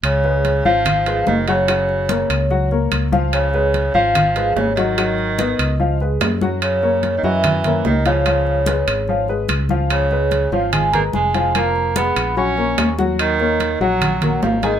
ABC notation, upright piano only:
X:1
M:4/4
L:1/8
Q:1/4=146
K:Dbmix
V:1 name="Upright piano"
z [A,Ac]2 [F,Ff]2 [A,Ac]2 [G,Gg] | [G,Gg]2 [B,Bd]2 [G,Gg] [B,Bd]2 [F,Ff]- | [F,Ff] [A,Ac]2 [F,Ff]2 [A,Ac]2 [G,Gg] | [G,Gg]2 [Cce]2 [F,Ff] [A,Ac]2 [G,Gg]- |
[G,Gg] [B,Bd]2 [G,Gg]2 [B,Bd]2 [F,Ff] | [F,Ff]2 [A,Ac]2 [F,Ff] [A,Ac]2 [F,Ff]- | [F,Ff] [A,Ac]2 [F,Ff]2 [A,Ac]2 [F,Ff] | [F,Ff]2 [A,Ac]2 [G,Gg] [B,Bd]2 [G,Gg]- |
[G,Gg] [B,Bd]2 [G,Gg]2 [B,Bd]2 [A,Aa] |]